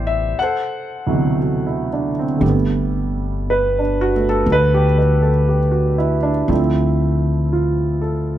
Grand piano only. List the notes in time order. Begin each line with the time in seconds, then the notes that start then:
Already playing: B2 C3 E3 G3 E4 G4 C5 D5
0.07 E5
0.39 A4 F#5
0.43 C5
1.06 D2 B2 C3 E3 F#3
1.41 F#4
1.66 E4
1.93 D4
2.19 C4
2.37 D3 G3
2.45 A3
2.49 B3
3.50 B4
3.79 D4
4.01 F#4
4.16 A3
4.29 A4
4.52 B4
4.74 G4
4.99 B4
5.22 A4
5.48 G4
5.71 F#4
5.98 E4
6.23 D4
6.48 F3 A3 C4 E4
7.53 F4
8.01 A4